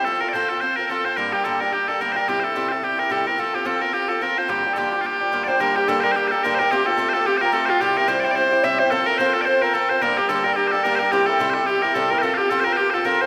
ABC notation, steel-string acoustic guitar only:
X:1
M:4/4
L:1/8
Q:"Swing" 1/4=217
K:Gdor
V:1 name="Steel-string acoustic guitar"
[F,CFA] [CFA] [F,CFA] [CFA] [F,CFA] [CFA] [F,CFA] [CFA] | [G,,D,G,B,DG] [G,B,DG] [G,,D,G,B,DG] [G,B,DG] [G,B,DG] [G,B,DG] [G,,D,G,B,DG] [G,B,DG] | [C,G,CEG] [CEG] [C,G,CEG] [CEG] [G,CEG] [CEG] [C,G,CEG] [CEG] | [F,CFA] [CFA] [F,CFA] [CFA] [F,CFA] [CFA] [F,CFA] [CFA] |
[G,,D,F,B,DG] [F,B,DG] [G,,D,F,B,DG] [F,B,DG] [F,B,DG] [F,B,DG] [G,,D,F,B,DG] [F,B,DG] | [G,,D,G,B,DG] [G,B,DG] [G,,D,G,B,DG] [G,B,DG] [G,B,DG] [G,B,DG] [G,,D,G,B,DG] [G,B,DG] | [A,CFG] [CFG] [A,CFG] [CFG] [A,CFG] [CFG] [A,CFG] [CFG] | [C,G,CEG] [CEG] [C,G,CEG] [CEG] [G,CEG] [CEG] [C,G,CEG] [CEG] |
[F,CFA] [CFA] [F,CFA] [CFA] [F,CFA] [CFA] [F,CFA] [CFA] | [G,,D,G,B,DG] [G,B,DG] [G,,D,G,B,DG] [G,B,DG] [G,B,DG] [G,B,DG] [G,,D,G,B,DG] [G,B,DG] | [C,G,CEG] [CEG] [C,G,CEG] [CEG] [G,CEG] [CEG] [C,G,CEG] [CEG] | [F,CFA] [CFA] [F,CFA] [CFA] [F,CFA] [CFA] [F,CFA] [CFA] |]